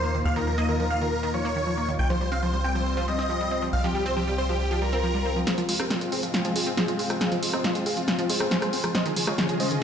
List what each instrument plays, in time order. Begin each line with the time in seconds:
Already playing: analog synth bass D#2, analog synth pad A#3 D#4 F4, supersaw synth C5
0.03 synth arpeggio sound A#3
0.14 synth arpeggio sound D#3
0.25 analog synth bass D#2, supersaw synth F5
0.36 synth arpeggio sound D#3, supersaw synth A#4
0.47 synth arpeggio sound F3, supersaw synth A#4
0.58 synth arpeggio sound A#3, supersaw synth D#5
0.69 synth arpeggio sound D#3, supersaw synth A#4
0.80 synth arpeggio sound F3, supersaw synth A#4
0.90 synth arpeggio sound A#3, supersaw synth F5
1.01 synth arpeggio sound D#3, supersaw synth A#4
1.12 supersaw synth A#4
1.23 synth arpeggio sound D#3, supersaw synth A#4
1.34 synth arpeggio sound F3, supersaw synth C#5
1.45 synth arpeggio sound A#3
1.56 synth arpeggio sound D#3
1.67 synth arpeggio sound F3
1.77 synth arpeggio sound A#3
1.88 synth arpeggio sound D#3
1.99 analog synth bass C2, analog synth pad G3 C4, supersaw synth G5
2.10 synth arpeggio sound F3, supersaw synth C5
2.21 synth arpeggio sound G3, supersaw synth C5
2.32 synth arpeggio sound C4, supersaw synth F5
2.43 synth arpeggio sound F3, supersaw synth C5
2.53 synth arpeggio sound G3, supersaw synth C5
2.64 synth arpeggio sound C4, supersaw synth G5
2.75 synth arpeggio sound F3, supersaw synth C5
2.86 supersaw synth C5
2.97 synth arpeggio sound F3, supersaw synth C5
3.08 synth arpeggio sound G3, supersaw synth D#5
3.19 synth arpeggio sound C4
3.30 synth arpeggio sound F3
3.40 synth arpeggio sound G3
3.51 synth arpeggio sound C4
3.62 synth arpeggio sound F3
3.73 analog synth bass C2, supersaw synth F5
3.84 synth arpeggio sound F3, supersaw synth G4
3.95 synth arpeggio sound G3, supersaw synth G4
4.06 synth arpeggio sound C4, supersaw synth C5
4.17 synth arpeggio sound F3, supersaw synth G4
4.27 synth arpeggio sound G3, supersaw synth G4
4.38 synth arpeggio sound C4, supersaw synth C5
4.49 synth arpeggio sound F3, supersaw synth G4
4.60 supersaw synth G4, swell
4.71 synth arpeggio sound F3, supersaw synth G4
4.82 synth arpeggio sound G3, supersaw synth A#4
4.93 synth arpeggio sound C4
5.03 synth arpeggio sound F3
5.14 synth arpeggio sound G3
5.25 synth arpeggio sound C4
5.36 synth arpeggio sound F3
5.47 analog synth pad G#3 C4 F4, supersaw synth G#4 C5, snare, closed hi-hat
5.58 synth arpeggio sound F3, supersaw synth F4, closed hi-hat
5.69 synth arpeggio sound G#3, supersaw synth F4, open hi-hat
5.80 synth arpeggio sound C4, supersaw synth G4 A#4, cross-stick
5.90 synth arpeggio sound F3, supersaw synth F4, snare, closed hi-hat
6.01 synth arpeggio sound G#3, supersaw synth F4, closed hi-hat
6.12 synth arpeggio sound C4, supersaw synth G#4 C5, open hi-hat
6.23 synth arpeggio sound F3, supersaw synth F4, closed hi-hat
6.34 supersaw synth F4, snare, closed hi-hat
6.45 synth arpeggio sound F3, supersaw synth F4, closed hi-hat
6.56 synth arpeggio sound G#3, supersaw synth F4 G#4, open hi-hat
6.67 synth arpeggio sound C4, closed hi-hat
6.77 synth arpeggio sound F3, snare, closed hi-hat
6.88 synth arpeggio sound G#3, closed hi-hat
6.99 synth arpeggio sound C4, open hi-hat
7.10 synth arpeggio sound F3, cross-stick, closed hi-hat
7.21 supersaw synth G#4 F5, snare, closed hi-hat
7.32 synth arpeggio sound F3, supersaw synth F4, closed hi-hat
7.43 synth arpeggio sound G#3, supersaw synth F4, open hi-hat
7.53 synth arpeggio sound C4, supersaw synth C5 D#5, cross-stick, closed hi-hat
7.64 synth arpeggio sound F3, supersaw synth F4, snare, closed hi-hat
7.75 synth arpeggio sound G#3, supersaw synth F4, closed hi-hat
7.86 synth arpeggio sound C4, supersaw synth G#4 F5, open hi-hat
7.97 synth arpeggio sound F3, supersaw synth F4, closed hi-hat
8.08 supersaw synth F4, snare, closed hi-hat
8.19 synth arpeggio sound F3, supersaw synth F4, closed hi-hat
8.30 synth arpeggio sound G#3, supersaw synth G#4 C5, open hi-hat
8.40 synth arpeggio sound C4, cross-stick
8.51 synth arpeggio sound F3, snare, closed hi-hat
8.62 synth arpeggio sound G#3, cross-stick, closed hi-hat
8.73 synth arpeggio sound C4, open hi-hat
8.84 synth arpeggio sound F3, cross-stick, closed hi-hat
8.95 analog synth pad C#3 C#4 G#4 D#5, supersaw synth C5 D#5, snare, closed hi-hat
9.06 synth arpeggio sound D#3, supersaw synth G#4, closed hi-hat
9.16 synth arpeggio sound F3, supersaw synth G#4, open hi-hat
9.27 synth arpeggio sound G#3, supersaw synth F4 C#5, cross-stick, closed hi-hat
9.38 synth arpeggio sound D#3, supersaw synth G#4, snare, closed hi-hat
9.49 synth arpeggio sound F3, supersaw synth G#4, closed hi-hat
9.60 synth arpeggio sound G#3, supersaw synth C5 D#5, open hi-hat
9.71 synth arpeggio sound D#3, supersaw synth G#4, closed hi-hat